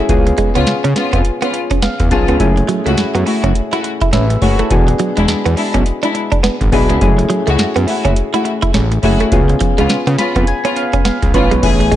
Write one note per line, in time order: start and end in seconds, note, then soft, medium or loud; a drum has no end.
0.00 0.11 A3 medium
0.00 0.09 C#4 medium
0.00 0.11 E4 medium
0.00 0.10 G#4 loud
0.09 0.33 C#2 loud
0.09 0.96 B3 medium
0.09 0.96 C#4 medium
0.09 0.96 F4 medium
0.09 0.97 G#4 medium
0.09 kick loud
0.09 closed hi-hat medium
0.27 muted clean electric guitar stroke soft
0.27 closed hi-hat soft
0.38 0.50 G#3 medium
0.38 kick medium
0.38 closed hi-hat medium
0.55 0.65 C#2 medium
0.55 0.66 B3 medium
0.55 0.63 B3 medium
0.55 0.66 C#4 medium
0.55 0.67 F4 medium
0.55 closed hi-hat medium
0.67 0.74 C#3 soft
0.67 snare medium
0.67 closed hi-hat medium
0.84 0.94 C#3 medium
0.84 0.92 C#4 medium
0.84 closed hi-hat medium
0.96 1.12 B3 medium
0.96 1.13 C#4 medium
0.96 1.13 F4 medium
0.96 muted clean electric guitar stroke soft
0.96 snare medium
0.96 closed hi-hat medium
1.13 1.23 F2 medium
1.13 1.21 B3 medium
1.13 kick medium
1.13 closed hi-hat soft
1.25 closed hi-hat medium
1.41 1.53 B3 medium
1.41 1.50 B3 medium
1.41 1.53 C#4 medium
1.41 1.53 F4 medium
1.41 closed hi-hat medium
1.53 muted clean electric guitar stroke soft
1.53 closed hi-hat medium
1.71 1.79 C#4 medium
1.71 kick medium
1.71 closed hi-hat medium
1.82 1.94 B3 medium
1.82 2.09 F5 medium
1.82 snare loud
1.82 closed hi-hat medium
2.00 2.09 E2 medium
2.00 muted clean electric guitar stroke soft
2.00 kick loud
2.00 closed hi-hat medium
2.10 2.26 B1 medium
2.10 2.28 B3 medium
2.10 2.34 B3 medium
2.10 2.28 C#4 medium
2.10 2.34 C#4 medium
2.10 2.28 F4 medium
2.10 2.35 F4 medium
2.10 2.35 G#4 medium
2.10 2.38 A5 medium
2.10 kick medium
2.10 closed hi-hat medium
2.28 2.38 C#2 medium
2.28 2.36 B3 medium
2.28 closed hi-hat medium
2.40 2.64 F#1 loud
2.40 3.27 A3 medium
2.40 3.27 C#4 medium
2.40 3.27 E4 medium
2.40 3.27 G#4 medium
2.40 kick loud
2.40 closed hi-hat medium
2.57 muted clean electric guitar stroke soft
2.57 closed hi-hat soft
2.69 2.80 F#3 medium
2.69 closed hi-hat medium
2.85 2.96 C#2 medium
2.85 2.97 A3 medium
2.85 2.94 A3 medium
2.85 2.97 E4 medium
2.85 2.97 F#4 medium
2.85 closed hi-hat medium
2.97 3.05 F#2 medium
2.97 snare loud
2.97 closed hi-hat medium
3.15 3.25 F#2 medium
3.15 3.22 B3 medium
3.15 closed hi-hat medium
3.26 3.43 A3 medium
3.26 3.43 E4 medium
3.26 3.43 F#4 medium
3.26 muted clean electric guitar stroke soft
3.26 open hi-hat medium
3.44 3.54 F#1 medium
3.44 3.51 C#4 medium
3.44 kick medium
3.44 closed hi-hat soft
3.55 closed hi-hat medium
3.72 3.84 A3 medium
3.72 3.84 E4 medium
3.72 3.80 E4 medium
3.72 3.84 F#4 medium
3.72 closed hi-hat medium
3.84 muted clean electric guitar stroke soft
3.84 closed hi-hat medium
4.01 4.09 E4 medium
4.01 kick medium
4.01 closed hi-hat soft
4.13 4.37 A1 loud
4.13 4.24 C#4 medium
4.13 4.41 B4 medium
4.13 4.40 E5 medium
4.13 snare loud
4.13 closed hi-hat medium
4.30 muted clean electric guitar stroke soft
4.30 closed hi-hat medium
4.41 4.57 F#1 loud
4.41 4.58 A3 medium
4.41 4.59 E4 medium
4.41 4.59 F#4 medium
4.41 4.59 G#4 medium
4.41 4.58 C#5 medium
4.41 kick medium
4.41 open hi-hat medium
4.59 4.67 A3 medium
4.59 4.87 E4 medium
4.59 4.87 A4 medium
4.59 closed hi-hat medium
4.70 4.95 E1 loud
4.70 5.57 B3 medium
4.70 5.58 D4 medium
4.70 5.58 F#4 medium
4.70 5.58 G#4 medium
4.70 kick loud
4.70 closed hi-hat medium
4.88 muted clean electric guitar stroke soft
4.88 closed hi-hat soft
4.99 5.11 F#3 medium
4.99 closed hi-hat medium
5.17 5.27 E1 medium
5.17 5.28 G#3 medium
5.17 5.25 G#3 medium
5.17 5.28 D4 medium
5.17 5.28 E4 medium
5.17 closed hi-hat medium
5.28 5.35 E2 medium
5.28 snare loud
5.28 closed hi-hat medium
5.46 5.56 E2 medium
5.46 5.53 B3 medium
5.46 closed hi-hat medium
5.57 5.74 G#3 medium
5.57 5.74 D4 medium
5.57 5.74 E4 medium
5.57 muted clean electric guitar stroke soft
5.57 open hi-hat medium
5.74 5.84 B1 loud
5.74 5.82 C#4 medium
5.74 kick medium
5.74 closed hi-hat medium
5.86 closed hi-hat medium
6.03 6.14 G#3 medium
6.03 6.11 D4 medium
6.03 6.15 D4 medium
6.03 6.15 E4 medium
6.03 closed hi-hat medium
6.15 muted clean electric guitar stroke soft
6.15 closed hi-hat medium
6.32 6.39 D4 medium
6.32 kick medium
6.32 closed hi-hat medium
6.43 6.55 B3 medium
6.43 snare loud
6.43 closed hi-hat medium
6.61 6.71 G#1 medium
6.61 muted clean electric guitar stroke soft
6.61 kick loud
6.61 closed hi-hat soft
6.72 6.87 B1 medium
6.72 6.89 G#3 medium
6.72 6.95 B3 medium
6.72 6.96 D4 medium
6.72 6.90 D4 medium
6.72 6.90 E4 medium
6.72 6.96 F#4 medium
6.72 6.96 G#4 loud
6.72 kick medium
6.72 open hi-hat medium
6.89 7.00 C#2 medium
6.89 6.97 G#3 medium
6.89 closed hi-hat medium
7.01 7.26 F#1 loud
7.01 7.88 A3 medium
7.01 7.88 C#4 medium
7.01 7.88 E4 medium
7.01 7.89 G#4 loud
7.01 kick loud
7.01 closed hi-hat medium
7.18 muted clean electric guitar stroke soft
7.18 closed hi-hat soft
7.30 7.41 F#3 medium
7.30 closed hi-hat medium
7.47 7.57 C#2 medium
7.47 7.55 A3 medium
7.47 7.59 A3 medium
7.47 7.59 E4 medium
7.47 7.59 F#4 medium
7.47 closed hi-hat medium
7.59 7.66 F#2 medium
7.59 snare loud
7.59 closed hi-hat medium
7.76 7.86 F#2 medium
7.76 7.84 B3 medium
7.76 closed hi-hat medium
7.87 8.05 A3 medium
7.87 8.05 E4 medium
7.87 8.05 F#4 medium
7.87 muted clean electric guitar stroke soft
7.87 open hi-hat medium
8.05 8.15 F#1 loud
8.05 8.13 C#4 medium
8.05 kick medium
8.05 closed hi-hat medium
8.16 closed hi-hat medium
8.34 8.45 A3 medium
8.34 8.42 E4 medium
8.34 8.45 E4 medium
8.34 8.45 F#4 medium
8.34 closed hi-hat medium
8.45 muted clean electric guitar stroke soft
8.45 closed hi-hat medium
8.62 8.70 E4 medium
8.62 kick medium
8.62 closed hi-hat medium
8.74 8.99 A1 loud
8.74 8.86 C#4 medium
8.74 snare loud
8.74 closed hi-hat medium
8.92 muted clean electric guitar stroke soft
8.92 closed hi-hat medium
9.03 9.18 F#1 medium
9.03 9.20 A3 medium
9.03 9.26 A3 medium
9.03 9.27 C#4 medium
9.03 9.20 E4 medium
9.03 9.27 E4 medium
9.03 9.20 F#4 medium
9.03 9.27 G#4 loud
9.03 kick medium
9.03 open hi-hat medium
9.20 9.28 A3 medium
9.20 closed hi-hat medium
9.32 9.56 C#2 loud
9.32 10.19 B3 medium
9.32 10.19 C#4 medium
9.32 10.19 F4 medium
9.32 10.20 G#4 medium
9.32 kick loud
9.32 closed hi-hat medium
9.49 muted clean electric guitar stroke soft
9.49 closed hi-hat soft
9.60 9.72 F3 medium
9.60 kick medium
9.60 closed hi-hat medium
9.78 9.88 C#2 medium
9.78 9.86 G#3 medium
9.78 9.89 B3 medium
9.78 9.89 C#4 medium
9.78 9.90 F4 medium
9.78 closed hi-hat medium
9.89 9.97 C#3 medium
9.89 snare loud
9.89 closed hi-hat medium
10.07 10.17 C#3 loud
10.07 10.15 B3 medium
10.07 closed hi-hat medium
10.18 10.35 B3 medium
10.18 10.35 C#4 medium
10.18 10.36 F4 medium
10.18 10.46 B5 medium
10.18 muted clean electric guitar stroke soft
10.18 snare medium
10.18 closed hi-hat medium
10.36 10.46 F2 medium
10.36 10.44 B3 medium
10.36 kick medium
10.36 closed hi-hat medium
10.47 10.74 G#5 medium
10.47 closed hi-hat medium
10.64 10.76 B3 medium
10.64 10.76 C#4 medium
10.64 10.72 C#4 medium
10.64 10.76 F4 medium
10.64 closed hi-hat medium
10.76 11.03 F5 medium
10.76 muted clean electric guitar stroke soft
10.76 closed hi-hat medium
10.93 11.01 C#4 medium
10.93 kick medium
10.93 closed hi-hat medium
11.05 11.17 B3 medium
11.05 11.32 F5 medium
11.05 snare loud
11.05 closed hi-hat medium
11.22 11.32 C#2 medium
11.22 muted clean electric guitar stroke soft
11.22 kick medium
11.22 closed hi-hat medium
11.34 11.49 A1 medium
11.34 11.51 B3 medium
11.34 11.57 B3 medium
11.34 11.51 C#4 medium
11.34 11.57 C#4 medium
11.34 11.51 F4 medium
11.34 11.57 F4 medium
11.34 11.58 B4 loud
11.34 11.61 C#5 medium
11.34 kick medium
11.34 closed hi-hat medium
11.51 11.61 B1 medium
11.51 11.59 G#3 medium
11.51 closed hi-hat medium
11.62 11.96 A1 loud
11.62 11.79 A3 medium
11.62 11.96 B3 medium
11.62 11.80 C#4 medium
11.62 11.96 C#4 medium
11.62 11.96 E4 medium
11.62 11.80 G#4 loud
11.62 11.96 G#4 medium
11.62 kick loud
11.62 closed hi-hat medium
11.62 crash loud
11.80 muted clean electric guitar stroke soft
11.80 closed hi-hat soft
11.92 11.96 G#3 medium
11.92 kick medium
11.92 closed hi-hat medium